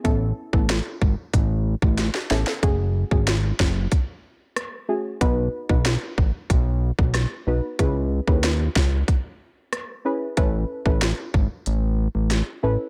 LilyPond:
<<
  \new Staff \with { instrumentName = "Synth stab" } { \time 4/4 \key a \lydian \tempo 4 = 93 <b cis' e' a'>8. <b cis' e' a'>16 r2 r8 <b cis' e' a'>16 r16 | <a cis' fis' gis'>8. <a cis' fis' gis'>16 r2 r8 <a cis' fis' gis'>16 r16 | <b dis' fis' b'>8. <b dis' fis' b'>16 r2 r8 <b dis' fis' b'>16 r16 | <cis' e' gis' b'>8. <cis' e' gis' b'>16 r2 r8 <cis' e' gis' b'>16 r16 |
<cis' e' a' b'>8. <cis' e' a' b'>16 r2 r8 <cis' e' a' b'>16 r16 | }
  \new Staff \with { instrumentName = "Analog synth bass" } { \clef bass \time 4/4 \key a \lydian a,,8 r16 a,,8 r16 gis,,16 r16 a,,8. a,,8 r16 a,,16 r16 | fis,,8. gis,,8. fis,,8 r2 | b,,8 r16 b,,8 r16 a,,16 r16 b,,8. b,,8 r16 b,,16 r16 | cis,8. dis,8. cis,8 r2 |
a,,8 r16 a,,8 r16 gis,,16 r16 a,,8. a,,8 r16 a,,16 r16 | }
  \new DrumStaff \with { instrumentName = "Drums" } \drummode { \time 4/4 <hh bd>8. bd16 <hh sn>8 bd8 <hh bd>8. bd16 <hh sn>16 sn16 sn16 sn16 | <hh bd>8. bd16 <hh sn>8 <bd sn>8 <hh bd>4 <hh ss>4 | <hh bd>8. bd16 <hh sn>8 bd8 <hh bd>8. bd16 <hh ss sn>4 | <hh bd>8. bd16 <hh sn>8 <bd sn>8 <hh bd>4 <hh ss>4 |
<hh bd>8. bd16 <hh sn>8 bd8 hh4 <hh sn>4 | }
>>